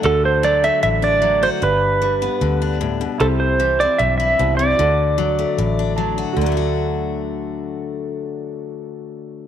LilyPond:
<<
  \new Staff \with { instrumentName = "Pedal steel guitar" } { \time 4/4 \key d \mixolydian \tempo 4 = 152 a'8 c''8 d''8 e''8 e''8 d''4 c''8 | b'2. r4 | a'8 c''4 d''8 e''8 e''4 d''8~ | d''2. r4 |
r1 | r1 | }
  \new Staff \with { instrumentName = "Grand piano" } { \time 4/4 \key d \mixolydian << { r1 | r1 | r1 | r2. a''4 |
r1 | r1 | } \\ { <d' fis' a'>1 | <d' g' b'>1 | <e' g' c''>2. <e' g' c''>4 | <fis' a' d''>1 |
<fis' a' d''>1~ | <fis' a' d''>1 | } >> }
  \new Staff \with { instrumentName = "Steel-string acoustic guitar" } { \clef bass \time 4/4 \key d \mixolydian << { <a fis'>4. a4 d'4 fis'8 | r4. b4 d'4. | r4. c'4 e'4. | r4. a4 d'4 fis'8 |
<fis a d' fis'>1~ | <fis a d' fis'>1 | } \\ { d4 fis4 a,4 fis4 | g,4 g4 d4 a,8 b,8 | c4 e4 g,4 b,8 c8 | d4 fis4 a,4 fis4 |
d1~ | d1 | } >> }
  \new Staff \with { instrumentName = "Fingered electric bass" } { \clef bass \time 4/4 \key d \mixolydian d,2 a,,2 | g,,2 d,2 | c,2 b,,4 c,4 | d,2 a,,2 |
d,1~ | d,1 | }
>>